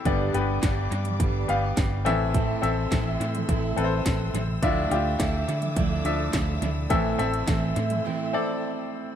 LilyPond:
<<
  \new Staff \with { instrumentName = "String section" } { \time 4/4 \key a \minor \tempo 4 = 105 << { d'''2.~ d'''8 e'''8~ | e'''1~ | e'''1~ | e'''1 | } \\ { <g' d'' b''>2.~ <g' d'' b''>8 <a' e'' c'''>8~ | <a' e'' c'''>1 | <a' e'' d'''>1 | <a' e'' c'''>1 | } >> }
  \new Staff \with { instrumentName = "Grand piano" } { \time 4/4 \key a \minor <b g' d''>8 <b g' b'>4. r8 <b g' f''>4 <c' a' e''>8~ | <c' a' e''>8 <c' a' e''>4. r8 <c' a' b' c''>4 r8 | <d' f' e''>8 <d' f' g'>4. r8 <f d' e''>4 r8 | <c' a' e''>8 <c' a' e''>4. r8 <c' a' d''>4 r8 | }
  \new Staff \with { instrumentName = "Grand piano" } { \clef bass \time 4/4 \key a \minor <g, d>4. r2 <a, e>8~ | <a, e>4 r2. | a,4. r2 r8 | <a, e>4. r2 r8 | }
  \new Staff \with { instrumentName = "Steel-string acoustic guitar" } { \time 4/4 \key a \minor <g, d g b d' g'>8 <g b d' g'>8 <g b d' g'>4 <g, d g b d' g'>8 <g b d' g'>4 <c' e' a'>8 | <a, e c' e' a'>8 <c' e' a'>8 <e c' e' a'>4 <a, e c' e' a'>8 <c' e' a'>4. | <d f a d' e'>8 <a d' e'>8 <f a d' e'>8 <a d' e'>8 <d f a d' e'>8 <a d' e'>4 <a d' e'>8 | <a, e a c' e'>8 <a c' e'>8 <e a c' e'>4 <a, e a c' e'>8 <a c' e'>4. | }
  \new Staff \with { instrumentName = "Fingered electric bass" } { \clef bass \time 4/4 \key a \minor g,,8 g,,8 g,,8 g,8 g,,8 g,,8 g,,8 a,,8~ | a,,8 a,,8 a,,8 a,8 a,,8 a,,8 a,,8 a,,8 | d,8 d,8 d,8 d8 d,8 d,8 d,8 d,8 | a,,8 a,,8 a,,8 a,8 r2 | }
  \new DrumStaff \with { instrumentName = "Drums" } \drummode { \time 4/4 <hh bd>8 hh8 <hc hh bd sn>8 hh16 <hh tomfh>16 <hh bd>8 hh8 <hc hh bd sn>8 <hh tomfh>8 | <hh bd>8 hh8 <hc hh bd sn>8 hh16 <hh tomfh>16 <hh bd>8 hh8 <hc hh bd sn>8 <hh tomfh>8 | <hh bd>8 hh8 <hc hh bd sn>8 hh16 <hh tomfh>16 <hh bd>8 hh8 <hc hh bd sn>8 <hh tomfh>8 | <hh bd>8 hh16 hh16 <hc hh bd sn>8 hh16 <hh tomfh>16 r4 r4 | }
>>